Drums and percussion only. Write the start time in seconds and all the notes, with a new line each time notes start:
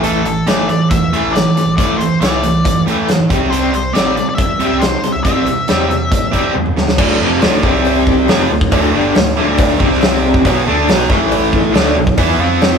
0.04 closed hi-hat
0.25 closed hi-hat
0.47 snare, closed hi-hat
0.69 closed hi-hat
0.91 kick, closed hi-hat
1.13 closed hi-hat
1.36 snare, closed hi-hat
1.57 closed hi-hat
1.78 kick, closed hi-hat
2.01 closed hi-hat
2.22 snare, closed hi-hat
2.43 closed hi-hat
2.65 kick, closed hi-hat
2.88 closed hi-hat
3.09 snare, closed hi-hat
3.30 kick, closed hi-hat
3.53 closed hi-hat
3.74 closed hi-hat
3.95 snare, closed hi-hat
4.17 closed hi-hat
4.38 kick, closed hi-hat
4.60 closed hi-hat
4.81 snare, closed hi-hat
5.04 closed hi-hat
5.25 kick, closed hi-hat
5.46 closed hi-hat
5.68 snare, closed hi-hat
5.91 closed hi-hat
6.12 kick, closed hi-hat
6.33 kick, closed hi-hat
6.55 high tom
6.66 mid tom
6.77 snare
6.88 snare
6.98 kick, crash, cowbell
7.42 snare, open hi-hat, cowbell
7.63 kick
7.85 open hi-hat, cowbell
8.07 kick
8.28 snare, open hi-hat, cowbell
8.61 kick
8.72 kick, open hi-hat, cowbell
9.15 snare, open hi-hat, cowbell
9.58 kick, open hi-hat, cowbell
9.80 kick
9.93 snare
10.01 snare, open hi-hat, cowbell
10.34 kick
10.45 kick, open hi-hat, cowbell
10.88 snare, open hi-hat, cowbell
11.10 kick, snare
11.32 open hi-hat, cowbell
11.53 kick
11.75 snare, open hi-hat, cowbell
12.07 kick
12.18 kick, open hi-hat, cowbell
12.61 snare, open hi-hat, cowbell